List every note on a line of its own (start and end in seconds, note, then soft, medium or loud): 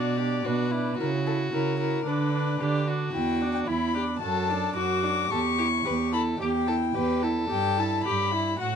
0.00 0.39 B2 soft
0.00 0.18 D4 soft
0.00 0.19 F#4 soft
0.00 0.47 D5 soft
0.17 0.44 D4 soft
0.17 0.46 G4 soft
0.44 0.92 B2 soft
0.44 0.71 D4 soft
0.44 0.73 F#4 soft
0.44 0.99 B4 soft
0.71 0.98 D4 soft
0.71 0.98 E4 soft
0.99 1.46 C#3 soft
0.99 1.25 E4 soft
0.99 2.04 F#4 soft
0.99 1.08 A#4 soft
1.26 1.52 E4 soft
1.26 1.35 A4 soft
1.53 2.00 C#3 soft
1.53 1.79 E4 soft
1.53 1.79 A#4 soft
1.80 2.06 E4 soft
1.80 2.08 A#4 soft
2.06 2.53 D3 soft
2.06 2.62 D4 soft
2.06 2.33 D4 soft
2.06 2.87 B4 soft
2.34 2.60 D4 soft
2.60 3.07 D3 soft
2.60 2.87 D4 soft
2.60 2.89 G4 soft
2.88 3.14 D4 soft
2.88 3.69 F#4 soft
3.13 3.61 E2 soft
3.13 3.43 E4 soft
3.13 3.51 G5 soft
3.42 3.69 D4 soft
3.54 3.60 G5 soft
3.67 4.15 E2 soft
3.67 3.95 E4 soft
3.67 3.96 E4 soft
3.67 4.19 B5 medium
3.95 4.21 D4 soft
3.95 4.03 G4 soft
4.20 4.70 F#2 soft
4.20 4.51 F#4 soft
4.20 4.75 A4 soft
4.20 4.74 A5 medium
4.50 4.78 D4 soft
4.76 5.24 F#2 soft
4.76 5.05 F#4 soft
4.76 5.30 F#4 soft
4.76 5.31 D6 medium
5.04 5.30 D4 soft
5.30 5.80 E2 soft
5.30 5.60 G4 soft
5.30 5.39 A4 soft
5.30 6.13 C#6 medium
5.58 5.87 E4 soft
5.58 5.66 G4 soft
5.86 6.34 E2 soft
5.86 6.14 G4 soft
5.86 5.94 B4 soft
6.13 6.40 E4 soft
6.13 6.40 A4 soft
6.13 6.21 B5 medium
6.40 6.89 E2 soft
6.40 6.69 G4 soft
6.40 6.49 G4 soft
6.40 7.22 G5 medium
6.68 6.96 E4 soft
6.68 6.76 A4 soft
6.95 7.45 E2 soft
6.95 7.24 G4 soft
6.95 7.25 B4 soft
7.23 7.49 E4 soft
7.23 8.05 A4 soft
7.50 7.99 G2 soft
7.50 7.79 G4 soft
7.50 7.81 G5 medium
7.78 8.07 E4 soft
7.78 8.04 A5 medium
8.04 8.54 G2 soft
8.04 8.34 G4 soft
8.04 8.32 G4 soft
8.04 8.58 B5 medium
8.32 8.59 E4 soft
8.32 8.60 E4 soft
8.59 8.76 A2 soft
8.59 8.76 F#4 soft
8.59 8.76 F#5 soft